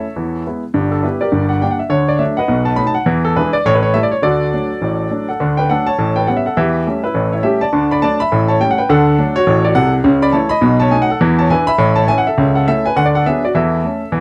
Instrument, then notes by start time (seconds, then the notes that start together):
grand piano
Already playing: A4 C#5 E5
0.16 E2 E3
0.46 G#3 B3 E4
0.74 G1 G2
0.91 A4
1.03 G3 B3 E4 G4 B4
1.21 G4 A#4 D5
1.32 G1 G2
1.49 F#5
1.62 G3 A#3 D4 G5
1.71 F#5
1.79 E5
1.89 D2 D3 C#5
2.08 D5
2.19 F#3 A3 D4 E5
2.37 B4 D#5 F#5
2.48 B1 B2
2.65 A5
2.76 F#3 A3 D#4 B5
2.87 A5
2.95 F#5
3.06 E2 E3
3.25 A4
3.37 E3 G#3 D4 E4 G#4 B4
3.53 D5
3.66 A1 A2 C#5
3.75 B4
3.83 C#5
3.94 G3 A3 E4 E5
4.03 D5
4.12 C#5
4.22 D2 D3 F#4 A4 D5
4.53 F#3 A3 D4
4.82 A1 A2
5.11 F#3 A3 D4
5.29 A4 F#5
5.40 D2 D3
5.57 B4 G5
5.70 F#3 A3 D4 A4 F#5
5.87 C#5 A5
5.99 A1 A2
6.16 B4 G5
6.27 G3 B3 C#4 F#5
6.37 E5
6.46 A4 F#5
6.57 E2 E3 G4 E5
6.86 G3 A3 C#4
7.04 E4 B4
7.14 A1 A2
7.32 E4 C#5
7.43 G3 A3 C#4 G4 E5
7.61 D5 A5
7.73 D2 D3
7.91 D5 B5
8.02 F#3 A3 D4 D5 A5
8.20 E5 B5
8.32 A1 A2
8.48 C#5 A5
8.60 G3 A3 C#4 G5
8.71 F#5
8.78 B4 G5
8.89 D2 D3 A4 F#5
9.18 F#3 A3 D4
9.36 F#4 C#5
9.47 A1 A2
9.64 F#4 D5
9.75 C2 C3 A4 F#5
10.04 C#2 C#3
10.22 D5 B5
10.32 E3 A3 E4 C#5 A5
10.49 D#5 B5
10.61 B1 B2
10.80 C#5 A5
10.91 F#3 A3 D#4 G#5
11.02 F#5
11.10 A4 F#5
11.21 E2 E3
11.39 C#5 A5
11.50 E3 D4 E4 B4 G#5
11.67 E5 B5
11.78 A1 A2
11.96 C#5 A5
12.08 E3 C#4 E4 G#5
12.18 F#5
12.27 A4 E5
12.38 C#2 C#3
12.55 A4 F#5
12.68 A3 C#4 E4 A4 E5
12.86 B4 G#5
12.96 D2 D3 F#5
13.06 D5
13.15 A4 F#5
13.26 F#3 B3 D4 G#4 E5
13.45 F#4 D5
13.55 E2 E3 A4 E5
13.84 A3 C#4
14.12 E2 E3